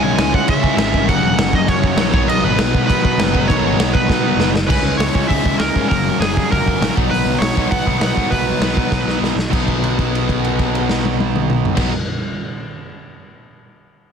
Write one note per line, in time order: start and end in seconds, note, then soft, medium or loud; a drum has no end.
0.00 0.17 B1 medium
0.00 0.62 C#3 medium
0.00 0.62 E3 medium
0.00 0.62 G#3 medium
0.00 0.61 C#4 loud
0.00 0.31 G#5 loud
0.18 0.32 C#2 loud
0.18 snare loud
0.18 crash medium
0.34 0.48 C#2 medium
0.34 0.49 F#5 medium
0.34 kick medium
0.48 0.76 C#3 loud
0.48 1.10 E5 loud
0.48 kick loud
0.48 crash medium
0.62 0.75 C#3 medium
0.62 0.76 E3 medium
0.62 0.76 G#3 medium
0.62 0.77 C#4 medium
0.62 kick loud
0.76 1.06 G#1 loud
0.76 1.05 C#3 medium
0.76 1.07 E3 medium
0.76 1.07 G#3 loud
0.76 1.07 C#4 medium
0.76 snare loud
0.76 crash medium
0.94 kick medium
1.05 1.22 F#1 medium
1.05 1.81 F#2 medium
1.05 1.81 C#3 medium
1.05 1.81 F#3 loud
1.05 1.80 A#3 loud
1.05 1.79 C#4 loud
1.05 1.22 F#5 loud
1.05 kick loud
1.05 crash medium
1.23 1.36 E1 loud
1.23 1.54 F#5 loud
1.37 1.52 F#1 medium
1.37 snare loud
1.37 crash medium
1.53 1.67 F#1 medium
1.53 1.69 D#5 medium
1.53 kick medium
1.68 1.96 F#2 loud
1.68 2.13 C#5 loud
1.68 kick loud
1.68 crash medium
1.81 1.94 F#2 medium
1.81 1.96 C#3 medium
1.81 1.96 F#3 medium
1.81 1.96 A#3 medium
1.81 1.96 C#4 loud
1.81 kick loud
1.96 2.11 A#1 loud
1.96 2.11 F#2 medium
1.96 2.11 C#3 medium
1.96 2.12 F#3 medium
1.96 2.12 A#3 loud
1.96 2.12 C#4 loud
1.96 snare loud
1.96 crash medium
2.11 2.27 B1 loud
2.11 2.86 B2 loud
2.11 2.87 F#3 loud
2.11 2.87 B3 loud
2.11 2.87 D#4 loud
2.11 2.28 C#5 loud
2.11 kick loud
2.28 2.42 B1 loud
2.28 2.43 D#5 loud
2.28 crash medium
2.43 2.57 G#1 medium
2.43 2.85 B4 loud
2.58 2.72 B1 medium
2.58 snare loud
2.58 crash medium
2.75 2.88 B1 medium
2.75 kick medium
2.87 3.02 B2 medium
2.87 3.17 B2 loud
2.87 3.02 F#3 medium
2.87 3.02 B3 medium
2.87 3.01 D#4 loud
2.87 3.03 B4 loud
2.87 kick loud
2.87 crash medium
3.02 3.30 B2 medium
3.02 3.32 F#3 medium
3.02 3.32 B3 medium
3.02 3.31 D#4 medium
3.02 3.46 B4 medium
3.02 kick loud
3.18 3.47 F#1 medium
3.18 snare loud
3.18 crash medium
3.32 4.07 B2 medium
3.32 4.07 F#3 loud
3.32 4.07 B3 medium
3.32 4.08 D#4 loud
3.32 kick medium
3.48 3.61 B1 loud
3.48 3.94 C#5 loud
3.48 kick loud
3.48 crash medium
3.62 3.76 G#1 loud
3.76 3.92 B1 medium
3.76 snare loud
3.76 crash medium
3.93 4.08 B1 medium
3.93 4.49 B4 medium
3.93 kick loud
4.08 4.22 B2 medium
4.08 4.36 B2 loud
4.08 4.23 F#3 medium
4.08 4.23 B3 medium
4.08 4.23 D#4 medium
4.08 kick loud
4.08 snare medium
4.24 4.54 B2 medium
4.24 4.53 F#3 medium
4.24 4.53 B3 medium
4.24 4.53 D#4 loud
4.37 4.66 F#1 medium
4.37 snare loud
4.56 snare loud
4.67 4.79 C#2 medium
4.67 5.12 C#3 medium
4.67 5.12 E3 medium
4.67 5.13 G#3 loud
4.67 5.12 C#4 medium
4.67 4.96 B4 medium
4.67 kick loud
4.67 crash loud
4.83 4.92 C#2 loud
4.97 5.08 C#2 medium
4.97 5.26 C#5 medium
4.97 snare loud
4.97 open hi-hat medium
5.13 5.24 C#2 medium
5.13 5.57 C#3 medium
5.13 5.58 E3 medium
5.13 5.58 G#3 medium
5.13 5.58 C#4 medium
5.13 kick medium
5.28 5.39 C#2 loud
5.28 5.88 C#3 medium
5.28 5.88 G#3 loud
5.28 5.89 C#4 loud
5.28 5.59 E5 loud
5.28 kick medium
5.28 open hi-hat medium
5.45 5.54 C#2 medium
5.45 kick medium
5.58 5.69 C#2 medium
5.58 5.87 C#3 medium
5.58 5.88 E3 medium
5.58 5.88 G#3 medium
5.58 5.89 C#4 medium
5.58 5.87 A#4 medium
5.58 snare loud
5.58 open hi-hat medium
5.76 5.85 G#2 medium
5.76 kick medium
5.88 6.09 F#1 medium
5.88 6.33 F#2 medium
5.88 6.33 C#3 medium
5.88 6.36 F#3 medium
5.88 6.34 A#3 medium
5.88 6.34 C#4 medium
5.88 6.20 A#4 loud
5.88 kick medium
5.88 open hi-hat medium
6.20 6.38 F#1 medium
6.20 6.51 G#4 medium
6.20 snare loud
6.20 open hi-hat medium
6.35 6.78 F#2 medium
6.35 6.79 C#3 medium
6.35 6.79 F#3 medium
6.35 6.79 A#3 medium
6.35 6.79 C#4 medium
6.35 kick medium
6.50 6.61 F#1 medium
6.50 6.94 F#2 medium
6.50 6.94 C#3 medium
6.50 6.95 F#3 medium
6.50 6.93 A#4 loud
6.50 kick loud
6.50 open hi-hat medium
6.68 6.76 F#1 medium
6.68 kick medium
6.79 6.89 A#1 medium
6.79 6.94 F#2 medium
6.79 6.94 C#3 medium
6.79 6.94 F#3 medium
6.79 6.94 A#3 medium
6.79 6.94 C#4 medium
6.79 snare loud
6.79 open hi-hat medium
6.95 7.06 B1 medium
6.95 7.39 B2 medium
6.95 7.41 F#3 medium
6.95 7.41 B3 medium
6.95 7.42 D#4 loud
6.95 kick medium
7.11 7.20 B1 medium
7.11 7.41 B4 loud
7.11 open hi-hat medium
7.26 7.35 B1 medium
7.38 7.50 B1 medium
7.38 7.87 B2 medium
7.38 7.87 F#3 medium
7.38 7.86 B3 medium
7.38 7.67 C#5 loud
7.38 snare loud
7.38 open hi-hat medium
7.42 7.85 D#4 medium
7.55 7.66 B1 medium
7.55 8.13 B2 medium
7.55 8.15 F#3 medium
7.55 8.15 B3 medium
7.55 kick loud
7.71 7.81 B1 medium
7.71 7.97 F#5 loud
7.71 kick loud
7.71 open hi-hat medium
7.85 7.96 B1 medium
7.85 8.14 B2 medium
7.85 8.15 F#3 medium
7.85 8.16 B3 medium
7.85 8.17 D#4 medium
7.85 kick medium
7.99 8.10 B1 medium
7.99 8.31 F#5 loud
7.99 snare loud
7.99 open hi-hat medium
8.14 8.27 G#2 medium
8.14 8.60 B2 medium
8.14 8.60 F#3 medium
8.14 8.60 B3 loud
8.14 8.61 D#4 medium
8.14 kick medium
8.30 8.51 B1 medium
8.30 9.17 B4 medium
8.30 kick medium
8.30 open hi-hat medium
8.60 8.79 B1 medium
8.60 9.05 B2 medium
8.60 9.05 F#3 medium
8.60 9.05 B3 medium
8.60 9.04 D#4 medium
8.60 snare loud
8.60 open hi-hat medium
8.74 9.36 B2 medium
8.74 9.36 F#3 medium
8.74 9.35 B3 medium
8.74 kick medium
8.91 9.01 B1 medium
8.91 kick medium
8.91 snare medium
9.05 9.16 B1 medium
9.05 9.36 B2 medium
9.05 9.36 F#3 medium
9.05 9.36 B3 medium
9.05 9.35 D#4 medium
9.05 snare medium
9.22 9.31 B1 medium
9.22 snare medium
9.36 9.46 B1 medium
9.36 snare medium
9.50 11.69 B1 medium
9.50 11.76 B2 medium
9.50 11.77 F#3 medium
9.50 11.79 B3 medium
9.50 11.79 D#4 loud
9.50 kick medium
9.50 crash medium
9.68 kick medium
9.68 crash soft
9.84 crash soft
9.99 kick medium
9.99 crash soft
10.15 crash soft
10.29 kick medium
10.29 crash soft
10.45 crash soft
10.59 kick medium
10.59 crash soft
10.75 crash soft
10.89 snare medium
11.05 high tom loud
11.20 high tom medium
11.36 mid tom medium
11.50 mid tom loud
11.65 floor tom loud
11.77 11.90 B1 medium
11.77 11.90 B2 medium
11.77 11.90 F#3 medium
11.77 11.91 B3 medium
11.77 11.91 D#4 loud
11.77 kick medium
11.77 snare medium
11.77 crash medium